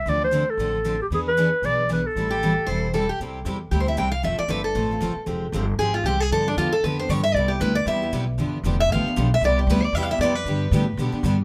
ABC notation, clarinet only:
X:1
M:4/4
L:1/8
Q:"Swing" 1/4=231
K:Am
V:1 name="Clarinet"
d c2 A4 G | ^G B3 d2 B A- | A6 z2 | [K:C] z8 |
z8 | z8 | z8 | z8 |
z8 | z8 | z8 |]